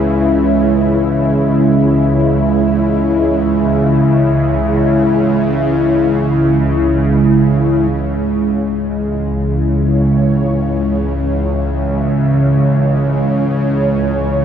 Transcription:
0.00 7.88 C#2 medium
0.00 7.89 C#3 medium
0.00 7.88 G#3 medium
0.00 7.90 E4 medium
0.00 7.93 B4 medium
0.00 7.90 C#5 medium
0.00 7.89 E5 medium
7.89 14.45 C#2 medium
7.89 14.45 C#3 medium
7.89 14.45 G#3 medium
8.84 14.45 E4 medium
9.08 14.45 C#5 medium
10.94 14.45 E5 medium

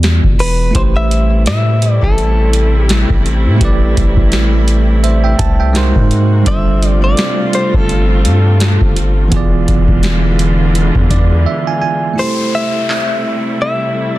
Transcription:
0.00 0.21 E2 loud
0.00 0.69 E3 medium
0.00 0.70 B3 medium
0.00 0.71 F4 medium
0.00 0.72 G#4 medium
0.00 0.73 D5 medium
0.00 closed hi-hat medium
0.04 snare loud
0.24 0.73 E1 medium
0.24 kick loud
0.39 0.73 B4 medium
0.39 open hi-hat medium
0.71 5.71 C3 medium
0.71 5.71 G3 medium
0.71 3.54 A3 medium
0.71 5.71 A3 medium
0.71 3.56 E4 medium
0.71 5.71 E4 medium
0.71 kick loud
0.75 1.48 A1 loud
0.75 3.57 G4 medium
0.75 3.58 B4 medium
0.75 0.81 C5 loud
0.75 closed hi-hat medium
0.79 3.59 C5 medium
0.96 1.43 E5 loud
1.11 closed hi-hat medium
1.46 2.00 A2 loud
1.46 1.92 E5 loud
1.46 snare loud
1.46 closed hi-hat medium
1.82 closed hi-hat medium
1.92 2.05 D5 loud
2.02 3.06 A1 loud
2.02 2.84 A4 medium
2.02 kick medium
2.18 closed hi-hat medium
2.53 closed hi-hat medium
2.84 3.21 G4 medium
2.89 snare loud
2.89 closed hi-hat medium
3.10 3.48 A1 loud
3.10 kick loud
3.26 closed hi-hat medium
3.46 3.60 A2 loud
3.56 5.69 A3 medium
3.56 5.70 E4 medium
3.61 3.95 A1 loud
3.61 5.71 G4 medium
3.61 5.02 B4 medium
3.61 kick loud
3.61 closed hi-hat medium
3.65 5.03 D5 medium
3.97 4.17 A1 medium
3.97 kick medium
3.97 closed hi-hat medium
4.17 5.35 A1 loud
4.17 kick loud
4.32 snare loud
4.32 closed hi-hat medium
4.68 closed hi-hat medium
5.04 5.23 C5 medium
5.04 5.23 E5 medium
5.04 closed hi-hat medium
5.24 5.39 E5 medium
5.24 5.38 G5 medium
5.39 5.93 C2 loud
5.39 5.59 A5 medium
5.39 kick loud
5.39 closed hi-hat medium
5.60 5.94 E5 medium
5.60 5.94 G5 medium
5.73 9.29 C3 medium
5.73 6.45 G#3 medium
5.73 6.46 G#3 medium
5.73 6.46 A#3 medium
5.73 6.46 D#4 medium
5.73 6.46 F#4 medium
5.73 6.47 A#4 medium
5.73 snare loud
5.73 closed hi-hat medium
5.77 6.47 C5 loud
5.96 6.44 G#2 medium
5.96 kick loud
6.11 closed hi-hat medium
6.43 7.15 G1 loud
6.43 9.26 G3 medium
6.43 9.29 G3 medium
6.43 9.29 A3 medium
6.43 9.27 D4 medium
6.43 9.29 F4 medium
6.43 kick loud
6.43 closed hi-hat medium
6.47 9.28 F4 medium
6.47 9.29 A4 medium
6.47 7.00 E5 loud
6.51 9.30 C5 medium
6.83 closed hi-hat medium
7.04 7.55 D5 loud
7.17 snare loud
7.17 closed hi-hat medium
7.53 7.76 C5 loud
7.53 closed hi-hat medium
7.74 8.27 G1 loud
7.74 8.97 A4 medium
7.74 kick medium
7.89 closed hi-hat medium
8.25 8.79 G2 loud
8.25 closed hi-hat medium
8.60 snare loud
8.60 closed hi-hat medium
8.81 9.30 G1 loud
8.81 kick loud
8.96 closed hi-hat medium
9.28 9.66 E1 loud
9.28 12.15 D3 medium
9.28 12.12 E3 medium
9.28 12.15 E3 medium
9.28 12.15 G#3 medium
9.28 12.13 B3 medium
9.28 12.15 F4 medium
9.28 12.14 F4 medium
9.28 kick loud
9.28 closed hi-hat medium
9.34 12.15 G#4 medium
9.34 11.10 D5 medium
9.68 9.88 E1 loud
9.68 kick medium
9.68 closed hi-hat medium
9.88 10.91 E1 loud
9.88 kick loud
10.03 snare loud
10.03 closed hi-hat medium
10.39 closed hi-hat medium
10.75 closed hi-hat medium
10.95 11.10 E2 loud
10.95 kick loud
11.10 11.46 E2 loud
11.10 11.44 D5 medium
11.10 kick loud
11.10 closed hi-hat medium
11.46 11.66 E5 medium
11.67 11.80 G#5 medium
11.82 12.15 G#5 medium
12.13 14.18 A3 medium
12.13 14.18 E4 soft
12.18 14.18 C3 medium
12.18 14.18 G3 medium
12.18 14.18 A3 medium
12.18 14.18 E4 medium
12.18 14.18 G4 soft
12.18 14.18 A4 soft
12.18 12.55 C5 medium
12.18 downlifter medium
12.22 14.18 C5 medium
12.55 13.61 E5 loud
12.90 clap loud
13.62 14.18 E5 medium

